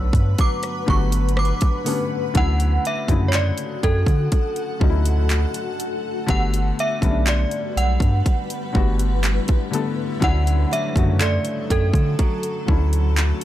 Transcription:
0.00 0.11 B1 medium
0.00 2.35 G2 medium
0.00 0.86 D3 loud
0.00 0.38 F#3 medium
0.00 0.87 G3 medium
0.00 0.88 A3 medium
0.00 0.89 B3 medium
0.00 1.85 B3 medium
0.00 0.90 F#4 loud
0.00 2.32 B4 medium
0.00 0.37 F#5 medium
0.00 2.32 B5 medium
0.00 0.44 E6 loud
0.13 0.35 G2 loud
0.13 kick loud
0.13 closed hi-hat medium
0.38 0.87 F#3 medium
0.38 2.33 F#5 medium
0.38 0.90 D6 medium
0.38 kick loud
0.38 closed hi-hat medium
0.63 cross-stick medium
0.63 closed hi-hat medium
0.86 1.52 G1 loud
0.86 1.62 D3 medium
0.86 2.95 F#3 medium
0.86 1.63 G3 medium
0.86 1.63 A3 medium
0.86 1.63 B3 medium
0.86 1.64 F#4 medium
0.86 1.04 C#6 medium
0.86 kick loud
1.12 closed hi-hat medium
1.29 closed hi-hat medium
1.37 2.08 D6 medium
1.37 cross-stick medium
1.45 closed hi-hat soft
1.61 kick medium
1.61 closed hi-hat medium
1.84 2.23 D3 medium
1.84 2.23 G3 medium
1.84 2.24 A3 medium
1.84 2.45 B3 medium
1.84 2.24 B3 medium
1.84 2.25 C#4 medium
1.84 open hi-hat medium
2.34 2.78 D2 loud
2.34 2.91 D3 medium
2.34 2.91 F#3 medium
2.34 2.92 A3 medium
2.34 2.92 C#4 medium
2.34 2.93 E4 loud
2.34 6.25 F#4 medium
2.34 6.25 A4 medium
2.34 6.25 F#5 medium
2.34 2.87 F#5 loud
2.34 kick loud
2.34 closed hi-hat medium
2.60 closed hi-hat medium
2.85 3.01 E5 loud
2.85 closed hi-hat medium
3.07 3.52 F#2 medium
3.07 4.41 C#3 medium
3.07 4.40 D3 medium
3.07 4.40 F#3 medium
3.07 4.41 A3 medium
3.07 4.42 E4 medium
3.07 kick medium
3.07 closed hi-hat medium
3.28 3.35 C#5 medium
3.33 3.49 D5 loud
3.33 clap loud
3.33 closed hi-hat medium
3.58 closed hi-hat medium
3.83 4.05 F#2 loud
3.83 5.76 A4 medium
3.83 kick medium
3.83 closed hi-hat medium
4.06 4.28 D3 loud
4.06 kick loud
4.06 closed hi-hat medium
4.32 kick loud
4.32 closed hi-hat medium
4.56 closed hi-hat medium
4.79 5.46 D2 medium
4.79 5.93 D3 medium
4.79 5.94 F#3 medium
4.79 5.94 A3 medium
4.79 5.95 C#4 medium
4.79 4.89 D#4 medium
4.79 kick loud
4.90 5.98 E4 medium
5.05 closed hi-hat medium
5.30 clap medium
5.30 closed hi-hat medium
5.54 closed hi-hat medium
5.80 closed hi-hat medium
6.26 6.72 G1 loud
6.26 6.84 D3 loud
6.26 6.85 G3 medium
6.26 10.18 G3 medium
6.26 6.85 A3 loud
6.26 6.85 B3 medium
6.26 8.23 F#4 medium
6.26 6.86 F#4 loud
6.26 10.18 B4 medium
6.26 6.44 F#5 loud
6.26 kick loud
6.26 closed hi-hat medium
6.54 closed hi-hat medium
6.79 7.30 E5 loud
6.79 closed hi-hat medium
7.01 7.45 B1 medium
7.01 8.33 D3 medium
7.01 8.34 G3 medium
7.01 8.34 A3 medium
7.01 8.35 B3 medium
7.01 7.10 C#4 medium
7.01 kick medium
7.01 closed hi-hat medium
7.11 8.38 D4 medium
7.27 7.78 D5 medium
7.27 clap loud
7.27 closed hi-hat medium
7.51 closed hi-hat medium
7.76 7.98 B1 medium
7.76 9.70 F#5 medium
7.76 closed hi-hat medium
8.00 8.22 G2 loud
8.00 kick loud
8.00 closed hi-hat medium
8.26 10.21 E4 medium
8.26 kick loud
8.26 closed hi-hat medium
8.50 closed hi-hat medium
8.73 9.39 G1 loud
8.73 9.49 D3 medium
8.73 9.49 G3 medium
8.73 9.50 A3 medium
8.73 9.50 B3 medium
8.73 9.51 F#4 medium
8.73 kick loud
8.99 closed hi-hat medium
9.24 clap medium
9.24 closed hi-hat medium
9.48 kick medium
9.48 closed hi-hat medium
9.71 10.10 D3 medium
9.71 10.10 G3 medium
9.71 10.11 A3 medium
9.71 10.11 B3 medium
9.71 10.11 A4 medium
9.71 closed hi-hat medium
10.20 10.65 D2 loud
10.20 10.77 D3 loud
10.20 13.44 D3 medium
10.20 10.78 F#3 medium
10.20 13.44 F#3 medium
10.20 10.78 A3 medium
10.20 10.79 C#4 medium
10.20 10.79 E4 loud
10.20 12.17 F#4 medium
10.20 13.44 A4 medium
10.20 10.74 F#5 loud
10.20 kick loud
10.20 closed hi-hat medium
10.47 closed hi-hat medium
10.71 12.18 F#3 medium
10.71 10.87 E5 loud
10.71 closed hi-hat medium
10.94 11.39 F#2 medium
10.94 12.28 C#3 medium
10.94 12.27 D3 medium
10.94 12.27 F#3 medium
10.94 12.28 A3 medium
10.94 kick medium
10.94 closed hi-hat medium
10.98 12.29 F#4 medium
11.20 13.44 A3 medium
11.20 11.36 D5 loud
11.20 clap loud
11.20 closed hi-hat medium
11.45 closed hi-hat medium
11.70 11.92 F#2 loud
11.70 13.44 A4 medium
11.70 kick medium
11.70 closed hi-hat medium
11.93 12.15 D3 loud
11.93 kick loud
11.93 closed hi-hat medium
12.19 12.68 F#3 medium
12.19 13.44 C#4 medium
12.19 kick loud
12.19 closed hi-hat medium
12.43 closed hi-hat medium
12.66 13.33 D2 loud
12.66 13.44 D3 medium
12.66 13.44 F#3 medium
12.66 13.44 A3 medium
12.66 13.44 C#4 medium
12.66 13.44 E4 medium
12.66 kick loud
12.93 closed hi-hat medium
13.17 clap loud
13.17 closed hi-hat medium

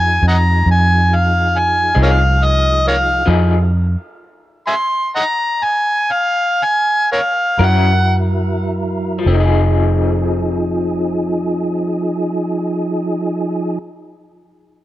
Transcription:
0.00 0.18 F2 loud
0.00 3.23 F3 medium
0.00 3.23 D#4 medium
0.00 3.23 G#4 medium
0.00 0.24 G#5 loud
0.23 0.62 F2 loud
0.28 0.37 D#5 medium
0.28 0.36 F#5 medium
0.28 0.67 A#5 loud
0.66 1.92 F2 medium
0.72 1.17 G#5 loud
1.16 1.61 F5 loud
1.59 1.98 G#5 loud
1.95 3.23 C2 loud
1.95 2.22 F3 medium
1.95 2.22 C4 medium
1.95 2.21 D#4 medium
1.95 2.21 G#4 medium
2.03 2.10 A#4 medium
2.03 2.10 C#5 medium
2.03 2.46 F5 loud
2.45 2.84 D#5 loud
2.88 2.96 A#4 medium
2.88 2.95 C#5 medium
2.88 3.28 F5 loud
3.26 3.95 F2 loud
3.26 3.53 F3 medium
3.26 3.53 C4 medium
3.26 3.54 D#4 medium
3.26 3.71 E4 medium
3.26 3.71 F#4 medium
3.26 3.54 G#4 medium
3.26 3.71 A4 medium
4.67 4.75 E5 medium
4.67 4.75 G#5 medium
4.67 5.11 C6 loud
5.16 5.24 D#5 medium
5.16 5.23 F#5 medium
5.16 5.65 A#5 loud
5.64 6.13 G#5 loud
6.12 6.65 F5 loud
6.63 7.10 G#5 loud
7.12 7.20 A#4 medium
7.12 7.21 C#5 medium
7.12 7.66 F5 loud
7.57 9.22 F#2 loud
7.57 9.24 F#3 medium
7.57 7.92 C#4 medium
7.57 9.24 E4 medium
7.57 7.92 E4 medium
7.57 9.24 A#4 medium
7.57 7.92 A#4 medium
7.61 7.93 F#3 medium
7.61 8.14 F#5 loud
9.19 13.75 F3 medium
9.26 13.78 F1 medium
9.26 13.78 F3 medium
9.26 13.84 C4 medium
9.26 13.79 D#4 medium
9.26 13.78 G#4 medium
9.34 13.90 D#4 medium
9.40 13.97 G#4 medium

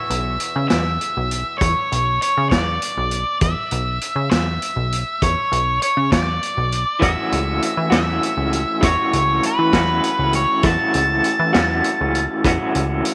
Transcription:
0.00 6.65 E2 medium
0.00 4.82 B2 medium
0.00 6.03 E3 medium
0.00 0.67 E5 medium
0.10 0.38 B1 medium
0.10 closed hi-hat medium
0.40 closed hi-hat medium
0.56 0.69 C#3 medium
0.68 0.98 E2 loud
0.68 1.56 E5 medium
0.68 snare medium
0.68 closed hi-hat medium
1.01 closed hi-hat soft
1.17 1.44 B1 medium
1.31 closed hi-hat medium
1.58 1.75 E2 medium
1.58 2.22 C#5 medium
1.58 kick loud
1.58 closed hi-hat medium
1.92 2.19 B1 medium
1.92 closed hi-hat medium
2.22 2.49 C#5 medium
2.22 closed hi-hat medium
2.38 2.51 C#3 loud
2.50 2.79 E2 medium
2.50 3.37 D5 medium
2.50 kick medium
2.50 snare medium
2.50 closed hi-hat medium
2.82 closed hi-hat medium
2.97 3.24 B1 medium
3.11 closed hi-hat medium
3.41 3.55 E2 medium
3.41 4.30 E5 medium
3.41 kick loud
3.41 closed hi-hat medium
3.71 3.99 B1 medium
3.71 closed hi-hat medium
4.01 closed hi-hat medium
4.16 4.30 C#3 loud
4.31 4.59 E2 medium
4.31 5.23 E5 medium
4.31 snare medium
4.31 closed hi-hat medium
4.62 closed hi-hat medium
4.76 5.04 B1 medium
4.92 closed hi-hat medium
5.22 5.36 E2 medium
5.22 5.79 C#5 medium
5.22 kick loud
5.22 closed hi-hat medium
5.52 5.79 B1 medium
5.52 closed hi-hat medium
5.82 6.12 C#5 medium
5.82 closed hi-hat medium
5.97 6.11 C#3 loud
6.12 6.39 E2 medium
6.12 7.02 D5 medium
6.12 kick medium
6.12 snare medium
6.12 closed hi-hat medium
6.43 closed hi-hat medium
6.57 6.85 B1 medium
6.72 closed hi-hat medium
7.00 7.16 E2 medium
7.00 7.90 E3 medium
7.00 7.92 A3 medium
7.00 7.91 C#4 medium
7.00 7.90 F#4 medium
7.00 7.92 E5 medium
7.00 kick loud
7.00 closed hi-hat medium
7.32 7.60 C#2 medium
7.32 closed hi-hat medium
7.62 closed hi-hat medium
7.77 7.91 E3 medium
7.90 8.20 E2 medium
7.90 8.80 E3 medium
7.90 8.82 A3 medium
7.90 8.83 C#4 medium
7.90 8.84 F#4 medium
7.90 8.86 E5 medium
7.90 snare loud
7.90 closed hi-hat medium
8.23 closed hi-hat medium
8.37 8.65 C#2 medium
8.53 closed hi-hat medium
8.81 8.97 E2 medium
8.81 9.71 E3 medium
8.81 9.74 A3 medium
8.81 9.73 C#4 loud
8.81 9.72 F#4 medium
8.81 9.46 C#5 medium
8.81 kick loud
8.81 closed hi-hat medium
9.13 9.41 C#2 medium
9.13 closed hi-hat medium
9.43 10.35 B4 medium
9.43 closed hi-hat medium
9.59 9.72 E3 loud
9.73 10.01 E2 medium
9.73 10.63 E3 medium
9.73 10.65 A3 medium
9.73 10.65 C#4 medium
9.73 10.66 F#4 medium
9.73 kick medium
9.73 snare medium
9.73 closed hi-hat medium
10.04 closed hi-hat medium
10.19 10.46 C#2 medium
10.33 10.65 C#5 medium
10.33 closed hi-hat medium
10.63 10.77 E2 medium
10.63 11.52 E3 medium
10.63 11.55 A3 medium
10.63 11.54 C#4 medium
10.63 11.53 F#4 medium
10.63 13.14 A5 medium
10.63 kick loud
10.63 closed hi-hat medium
10.94 11.22 C#2 medium
10.94 closed hi-hat medium
11.24 closed hi-hat medium
11.39 11.53 E3 medium
11.53 11.82 E2 loud
11.53 12.43 E3 medium
11.53 12.43 A3 medium
11.53 12.43 C#4 medium
11.53 12.42 F#4 medium
11.53 snare medium
11.53 closed hi-hat medium
11.84 closed hi-hat medium
12.01 12.27 C#2 medium
12.15 closed hi-hat soft
12.44 12.58 E2 medium
12.44 13.14 E3 medium
12.44 13.14 A3 medium
12.44 13.14 C#4 medium
12.44 13.14 F#4 loud
12.44 kick loud
12.44 closed hi-hat medium
12.75 13.02 C#2 medium
12.75 closed hi-hat medium
13.05 closed hi-hat medium

